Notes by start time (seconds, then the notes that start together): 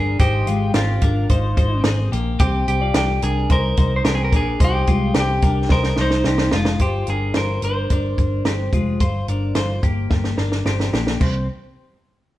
Already playing: G1 D4 G#4 A#4
0.19 G#1 D#4 G4 C5, kick, closed hi-hat
0.47 G#1 G#3 F4, closed hi-hat
0.74 G#1 C4 F4 G4, snare, closed hi-hat
1.01 G#1 D4 A#4, kick, closed hi-hat
1.29 G#1 D#4 C5, kick, closed hi-hat
1.57 G#1 D#4 C5, kick, closed hi-hat
1.84 G#1 C4 G#4, snare, closed hi-hat
2.12 A#1 A#3 G4, closed hi-hat
2.39 C2 C4 G4, kick, closed hi-hat
2.68 C2 G4, closed hi-hat
2.81 F4 D5
2.94 C2 G4, snare, closed hi-hat
3.22 C2 D4 G#4 A#4, closed hi-hat
3.50 C2 D#4 A#4 C5, kick, closed hi-hat
3.77 C2 D#4 C5, kick, closed hi-hat
3.96 C5
4.05 C2 C4 G4 A#4, snare, closed hi-hat
4.15 G#4
4.24 A#4
4.32 A#1 D4 A#4, kick, closed hi-hat
4.36 G#4
4.60 C2 D#4 C5, kick, closed hi-hat
4.64 G4
4.87 C2 G#3 F4, kick, closed hi-hat
5.14 C2 C4 G4, snare, closed hi-hat
5.20 G4
5.42 C2 D4 A#4, kick, closed hi-hat
5.69 C2 D#4 A#4 C5, kick, snare
5.83 snare
5.96 C2 D#4 C5, snare
6.01 D#4 C5
6.11 snare
6.24 C2 C4 G4, snare
6.38 snare
6.51 F1 G#3 F4, snare
6.56 F4
6.65 snare
6.79 G1 F4 G4 C5, kick, closed hi-hat
7.07 G1 D4 G#4 A#4, closed hi-hat
7.34 G1 F4 A#4 C5, snare, closed hi-hat
7.62 G1 D4 A#4 C5, closed hi-hat
7.90 G1 D4 A#4, kick, closed hi-hat
8.18 G1, kick, closed hi-hat
8.45 G1 C4 G4, snare, closed hi-hat
8.73 F1 G#3 F4, kick, closed hi-hat
9.00 G1 F4 C5, kick, closed hi-hat
9.28 G1 D4 A#4, closed hi-hat
9.55 G1 F4 C5, snare, closed hi-hat
9.83 G1 A#3 G4, kick, closed hi-hat
10.10 G1, kick, snare
10.24 snare
10.38 G1 D4 A#4, snare
10.52 snare
10.65 G1 C4 G4, snare
10.80 snare
10.93 A#1 A#3 G4, snare
11.07 snare
11.21 C2 C4, kick, crash